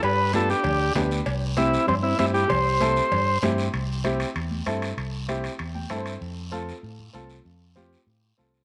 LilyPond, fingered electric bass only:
\new Staff \with { instrumentName = "Fingered electric bass" } { \clef bass \time 4/4 \key c \major \tempo 4 = 194 g,2 d,4 d,4 | c,2 g,4 g,4 | c,2 g,4 g,4 | c,2 e,4 g,4 |
c,2 e,4 g,4 | f,2 a,4 c,4 | f,2 a,4 c,4 | }